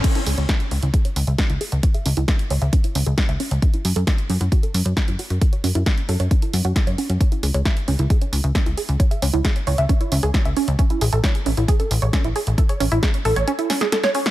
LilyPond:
<<
  \new Staff \with { instrumentName = "Synth arpeggio sound" } { \time 4/4 \key cis \minor \tempo 4 = 134 cis'16 e'16 gis'16 cis''16 e''16 r16 cis'16 e'16 gis'16 cis''16 r16 e''16 cis'16 e'16 gis'16 r16 | cis''16 e''16 cis'16 e'16 gis'16 r16 cis''16 e''16 cis'16 e'16 cis'16 gis'16 cis''16 e''16 cis'16 r16 | cis'16 e'16 fis'16 a'16 cis''16 r16 cis'16 e'16 fis'16 a'16 r16 cis''16 cis'16 e'16 fis'16 r16 | a'16 cis''16 cis'16 e'16 fis'16 r16 a'16 cis''16 cis'16 e'16 cis'16 fis'16 r16 cis''16 cis'16 r16 |
cis'16 e'16 gis'16 cis''16 e''16 r16 cis'16 e'16 gis'16 cis''16 r16 e''16 cis'16 e'16 gis'16 r16 | cis''16 e''16 cis'16 e'16 gis'16 r16 cis''16 e''16 cis'16 e'16 cis'16 gis'16 cis''16 e''16 cis'16 r16 | cis'16 e'16 gis'16 a'16 cis''16 r16 cis'16 e'16 gis'16 a'16 r16 cis''16 cis'16 e'16 gis'16 r16 | a'16 cis''16 cis'16 e'16 gis'16 r16 a'16 cis''16 cis'16 e'16 cis'16 gis'16 a'16 cis''16 cis'16 r16 | }
  \new Staff \with { instrumentName = "Analog synth bass" } { \clef bass \time 4/4 \key cis \minor r8 cis,16 cis,16 r8 cis,16 cis,16 r8 cis,16 cis,16 r16 cis,16 r16 cis,16 | r8 cis,16 cis,16 r8 cis,16 cis,16 r8 cis,16 cis,16 r16 cis,16 r16 cis,16 | r8 fis,16 fis,16 r8 fis,16 fis,16 r8 fis,16 fis,16 r16 fis,16 r16 fis,16 | r8 fis,16 fis,16 r8 fis,16 fis,16 r8 fis,16 fis,16 r16 fis,16 r16 fis,16 |
r8 cis,16 cis,16 r8 cis,16 cis,16 r8 cis,16 cis,16 r16 cis,16 r16 cis,16 | r8 cis,16 cis,16 r8 cis,16 cis,16 r8 cis,16 cis,16 r16 cis,16 r16 cis,16 | r8 a,,16 a,,16 r8 a,,16 a,,16 r8 a,,16 a,,16 r16 a,,16 r16 a,,16 | r8 a,,16 a,,16 r8 a,,16 a,,16 r2 | }
  \new DrumStaff \with { instrumentName = "Drums" } \drummode { \time 4/4 <cymc hh bd>16 hh16 hho16 hh16 <hh bd sn>16 hh16 hho16 hh16 <hh bd>16 hh16 hho16 hh16 <hh bd sn>16 hh16 hho16 hh16 | <hh bd>16 hh16 hho16 hh16 <hh bd sn>16 hh16 hho16 hh16 <hh bd>16 hh16 hho16 hh16 <hh bd sn>16 hh16 hho16 hh16 | <hh bd>16 hh16 hho16 hh16 <hh bd sn>16 hh16 hho16 hh16 <hh bd>16 hh16 hho16 hh16 <hh bd sn>16 hh16 hho16 hh16 | <hh bd>16 hh16 hho16 hh16 <hh bd sn>16 hh16 hho16 hh16 <hh bd>16 hh16 hho16 hh16 <hh bd sn>16 hh16 hho16 hh16 |
<hh bd>16 hh16 hho16 hh16 <hh bd sn>16 hh16 hho16 hh16 <hh bd>16 hh16 hho16 hh16 <hh bd sn>16 hh16 hho16 hh16 | <hh bd>16 hh16 hho16 hh16 <hh bd sn>16 hh16 hho16 hh16 <hh bd>16 hh16 hho16 hh16 <hh bd sn>16 hh16 hho16 hh16 | <hh bd>16 hh16 hho16 hh16 <hh bd sn>16 hh16 hho16 hh16 <hh bd>16 hh16 hho16 hh16 <hh bd sn>16 hh16 hho16 hh16 | <hh bd>16 hh16 hho16 hh16 <hh bd sn>16 hh16 hho16 hh16 hh16 hh16 <hho sn>16 <hh sn>16 <hh sn>16 <hh sn>16 hho16 <hh sn>16 | }
>>